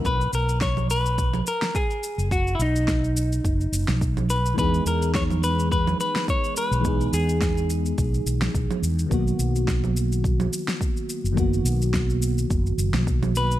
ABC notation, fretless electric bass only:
X:1
M:4/4
L:1/16
Q:"Swing 16ths" 1/4=106
K:B
V:1 name="Fretless electric bass" clef=bass
B,,, z B,,,8 z4 z F,,,- | F,,,2 B,,,6 F,,, z F,,, B,,,4- B,,, | E,, z E,,8 z4 z B,,,- | B,,,2 E,,6 B,,, z B,,, z B,,, z E,, z |
B,,, z B,,,8 z4 z F,,,- | F,,,2 B,,,6 F,,, z F,,, B,,,4- B,,, |]